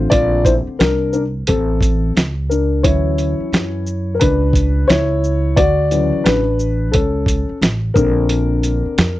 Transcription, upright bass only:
0.12 A#1
0.67 muted upright bass stroke
0.80 C2
1.49 A1
2.16 C#2
2.84 D2
3.40 muted upright bass stroke
3.52 F#2
4.22 C#2
4.89 C#2
5.57 D2
6.13 muted upright bass stroke
6.25 A1
6.95 C#2
7.49 muted upright bass stroke
7.61 A1
7.96 A#1
8.85 muted upright bass stroke
8.98 F2

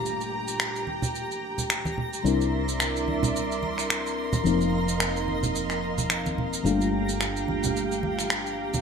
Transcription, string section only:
Already playing: A#2 G4 A#5
0.05 G5
2.24 A#4 D5 E5 C6
4.44 D#5 F5
6.65 G4 G5

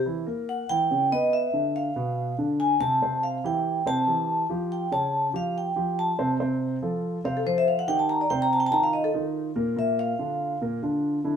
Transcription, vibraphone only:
0.49 F#5
0.69 G5
1.12 D#5
1.33 E5
1.76 F5
2.60 G#5
2.81 A5
3.23 F5
3.46 G5
3.87 A5
4.72 G5
4.93 A5
5.36 F5
5.58 G5
5.99 A5
7.25 F5
7.37 A4
7.47 C5
7.58 E5
7.68 F5
7.79 F#5
7.88 G5
7.99 A5
8.09 A#5
8.21 D5
8.30 G5
8.42 A#5
8.53 A5
8.60 G5
8.66 A5
8.72 A#5
8.84 F5
8.93 D#5
9.04 A4
9.79 E5
9.99 F5

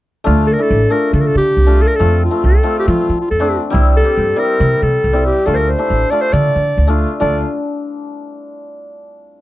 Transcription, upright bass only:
0.27 D2
0.70 A1
1.13 D3
1.35 D3
1.57 C2
2.00 F2
2.44 C2
2.88 F3
3.09 F3
3.31 F2
3.74 C2
4.17 G2
4.60 C3
4.82 C3
5.04 C2
5.47 D2
5.90 A1
6.33 D3
6.56 D3
6.77 D2
7.22 D2

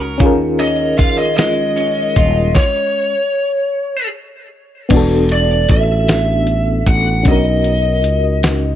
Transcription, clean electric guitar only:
Already playing: G#3 C#4 F#4
0.00 A#4
0.20 D#3
0.59 C#4
0.98 F4
1.37 G#3
1.76 C#4
2.17 F4

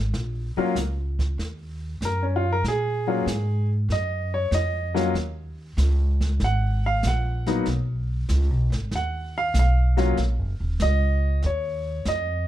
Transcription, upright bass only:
Already playing: G#1
0.13 A#1
0.56 muted upright bass stroke
0.75 C#2
1.38 D#2
2.01 F#2
2.63 A#2
3.26 G#2
3.89 F#2
4.51 F2
5.14 D#2
5.77 C#2
6.40 G#1
7.03 A#1
7.66 B1
8.29 C#2
8.50 B1
8.70 G#1
8.92 D#2
9.54 B1
10.18 A#1
10.39 F#1
10.60 D#1
10.81 C#2
11.44 D#2
12.06 F2

